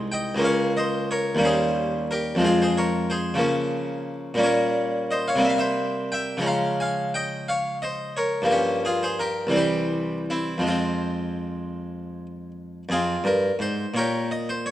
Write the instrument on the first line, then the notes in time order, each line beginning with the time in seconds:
harpsichord
Already playing: C2 G#3 C4 D#4
0.12 D#5 G5
0.35 C#2 G#3 A#3
0.40 C#4
0.44 C#5 F5
0.77 C5 D#5
1.11 A#4 C#5
1.35 D#2 G3 A#3
1.40 C#4
1.44 G#4 C5
2.11 G4 A#4
2.35 F2 F3 G#3
2.40 C4
2.44 F4 G#4
2.62 G#4 C5
2.78 A#4 C#5
3.10 G#4 C5
3.34 C#3 F3 A#3
3.39 C#4
4.34 A#2 G3 A#3
4.39 C#4
4.43 A#4 C#5
5.11 C5 D#5
5.28 C#5 F5
5.36 C3 G3 A#3
5.41 C4
5.45 E5
5.49 F5
5.58 C5 E5
6.12 E5 G5
6.37 C#3 F3 G#3
6.42 C#4
6.46 F5 A#5
6.80 F5 G#5
7.14 D#5 G5
7.48 C#5 F5
7.82 C5 D#5
8.17 A#4 C#5
8.42 G2 F3 A#3
8.51 C#4 G4
8.85 F4 G#4
9.03 G#4 C5
9.19 G4 A#4
9.47 C2 E3 G3
9.52 C4
9.56 G4 C5
10.30 C4 E4
10.58 F2 F3 G#3
10.67 C4 F4
12.89 F2 C4 F4 G#4
13.24 G2 A#4
13.59 G#2 C5
13.94 A#2 A#4 C#5
13.98 G4
14.31 D#5
14.49 C5
14.66 C#5